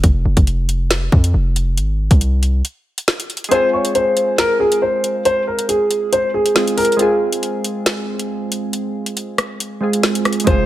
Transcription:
0.04 0.24 F1 loud
0.04 kick loud
0.04 closed hi-hat medium
0.25 0.36 F1 loud
0.37 1.09 F1 loud
0.37 kick medium
0.37 closed hi-hat medium
0.47 closed hi-hat medium
0.69 closed hi-hat medium
0.91 snare loud
0.91 closed hi-hat medium
1.12 1.33 F2 loud
1.12 kick medium
1.24 closed hi-hat medium
1.34 1.79 F1 loud
1.56 closed hi-hat medium
1.77 2.09 G#1 loud
1.77 closed hi-hat medium
2.11 2.62 C2 loud
2.11 kick medium
2.11 closed hi-hat medium
2.21 closed hi-hat medium
2.43 closed hi-hat medium
2.65 closed hi-hat medium
2.98 closed hi-hat medium
3.08 snare loud
3.20 closed hi-hat medium
3.30 closed hi-hat soft
3.37 closed hi-hat medium
3.44 closed hi-hat medium
3.49 6.50 G#3 medium
3.49 6.51 C4 medium
3.49 6.52 F4 medium
3.49 3.68 C5 loud
3.49 closed hi-hat medium
3.54 6.53 G#4 medium
3.73 3.90 C#5 medium
3.85 closed hi-hat medium
3.95 4.36 C5 medium
3.95 closed hi-hat medium
4.17 closed hi-hat medium
4.38 4.55 A#4 loud
4.38 snare loud
4.38 closed hi-hat medium
4.60 4.77 G#4 medium
4.72 closed hi-hat medium
4.82 5.23 C5 medium
5.04 closed hi-hat medium
5.25 5.42 C5 loud
5.25 closed hi-hat medium
5.47 5.64 A#4 medium
5.59 closed hi-hat medium
5.69 6.10 G#4 medium
5.69 closed hi-hat medium
5.91 closed hi-hat medium
6.12 6.29 C5 medium
6.12 closed hi-hat medium
6.34 6.75 G#4 medium
6.46 closed hi-hat medium
6.55 6.95 G#3 medium
6.55 6.97 C4 medium
6.55 6.99 F4 soft
6.55 7.00 G#4 medium
6.55 snare loud
6.68 closed hi-hat medium
6.77 6.94 A#4 medium
6.77 closed hi-hat medium
6.77 open hi-hat medium
6.85 closed hi-hat medium
6.92 closed hi-hat soft
6.97 9.77 G#3 medium
6.97 9.77 C4 medium
6.97 9.78 F4 medium
6.97 closed hi-hat medium
7.02 9.79 G#4 medium
7.33 closed hi-hat medium
7.43 closed hi-hat medium
7.64 closed hi-hat medium
7.86 snare loud
7.86 closed hi-hat medium
8.20 closed hi-hat medium
8.52 closed hi-hat medium
8.73 closed hi-hat medium
9.06 closed hi-hat medium
9.17 closed hi-hat medium
9.38 cross-stick loud
9.38 closed hi-hat medium
9.60 closed hi-hat medium
9.81 10.43 G#3 medium
9.81 10.45 C4 soft
9.81 10.47 F4 soft
9.81 10.48 G#4 medium
9.93 closed hi-hat medium
10.03 snare loud
10.15 closed hi-hat medium
10.25 cross-stick loud
10.25 closed hi-hat soft
10.33 closed hi-hat medium
10.40 closed hi-hat medium
10.44 10.66 F1 loud
10.44 10.66 G#3 medium
10.44 10.66 C4 medium
10.44 10.66 F4 medium
10.44 10.64 C5 loud
10.44 kick loud
10.44 closed hi-hat medium
10.50 10.66 G#4 medium

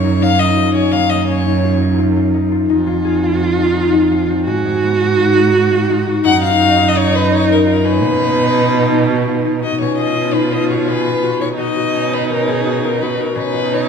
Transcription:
0.00 0.92 F#2 medium
0.00 0.83 B3 medium
0.00 0.21 D#4 medium
0.00 0.57 F4 medium
0.00 0.24 C#5 medium
0.21 0.39 D#4 medium
0.21 0.41 F5 loud
0.39 1.46 D#4 medium
0.39 0.74 D#5 medium
0.57 1.64 F4 medium
0.74 1.28 C#4 medium
0.74 0.93 C#5 medium
0.92 2.70 F#2 medium
0.92 1.11 A#3 medium
0.92 1.11 F5 loud
1.10 4.32 A#3 medium
1.10 1.27 D#5 medium
1.29 4.18 C#4 medium
1.29 1.95 C#5 medium
1.46 1.81 D#4 medium
1.64 1.98 F4 medium
1.82 2.34 D#4 medium
1.98 2.16 F4 medium
2.16 2.51 F4 medium
2.34 2.69 D#4 medium
2.51 2.86 F4 medium
2.69 4.48 F2 medium
2.69 3.58 D#4 medium
2.69 4.43 F4 medium
2.87 3.22 F4 medium
3.05 5.32 G#4 medium
3.23 3.40 F4 medium
3.40 4.11 F4 medium
3.59 3.76 D#4 medium
3.76 3.94 D#4 medium
3.94 5.01 D#4 medium
4.12 5.17 F4 medium
4.29 4.89 C4 medium
4.45 6.25 G#2 medium
4.45 4.64 G#3 medium
4.45 6.26 F#4 medium
4.65 6.30 G#3 medium
4.83 7.93 B3 medium
5.01 5.35 D#4 medium
5.18 5.59 F4 medium
5.36 5.89 D#4 medium
5.53 5.78 F#4 medium
5.72 6.12 F4 medium
5.90 6.24 D#4 medium
6.06 6.49 F#4 medium
6.24 8.03 F#2 medium
6.24 8.01 D#4 medium
6.24 7.12 D#4 medium
6.24 6.41 F#5 loud
6.43 6.67 F4 medium
6.43 6.90 F5 loud
6.61 6.84 F#4 medium
6.78 6.96 F4 medium
6.88 6.99 D#5 medium
6.96 7.66 F4 medium
6.96 7.17 C#5 medium
7.13 7.30 D#4 medium
7.13 7.32 B4 medium
7.31 7.48 D#4 medium
7.31 7.49 C#5 medium
7.49 8.55 D#4 medium
7.49 7.67 A#4 medium
7.66 8.74 F4 medium
7.66 7.87 A#4 medium
7.84 9.80 C#4 medium
7.84 9.27 B4 medium
8.02 9.76 B2 medium
8.02 8.20 A#3 medium
8.02 9.58 D#4 medium
8.20 8.44 A#3 medium
8.38 11.48 B3 medium
8.56 8.91 D#4 medium
8.74 9.15 F4 medium
8.92 9.45 D#4 medium
9.09 9.33 F#4 medium
9.27 9.68 F4 medium
9.45 10.15 D#4 medium
9.62 10.04 F#4 medium
9.62 9.80 D#5 medium
9.79 11.58 B2 medium
9.79 11.94 C#4 medium
9.79 11.54 F4 medium
9.79 9.97 C#5 medium
9.98 10.52 F4 medium
9.98 10.35 D#5 medium
10.15 10.34 D#4 medium
10.34 11.40 D#4 medium
10.34 10.54 B4 medium
10.52 10.76 F4 medium
10.52 10.69 D#5 medium
10.70 11.12 F#4 medium
10.70 10.90 C#5 medium
10.88 13.15 G#4 medium
10.88 11.40 B4 medium
11.06 11.28 F4 medium
11.22 11.58 F#4 medium
11.40 13.71 D#4 medium
11.40 11.49 C#5 medium
11.57 13.36 B2 medium
11.57 13.32 D#4 medium
11.57 11.75 F#4 medium
11.57 12.15 D#5 medium
11.76 12.64 F#4 medium
11.95 12.29 C#4 medium
12.12 12.47 B3 soft
12.12 12.30 B4 medium
12.30 13.35 C#4 medium
12.30 12.50 A#4 medium
12.47 13.89 B3 medium
12.47 12.85 G#4 medium
12.65 12.89 F#4 medium
12.83 13.07 F4 medium
12.83 13.03 A#4 medium
13.01 13.18 F#4 medium
13.01 13.22 B4 medium
13.18 13.59 F#4 medium
13.18 13.38 A#4 medium
13.35 13.89 B2 medium
13.35 13.89 C#4 medium
13.35 13.89 D#4 medium
13.35 13.75 B4 medium
13.53 13.89 F4 medium
13.71 13.89 D#4 medium
13.71 13.89 C#5 medium

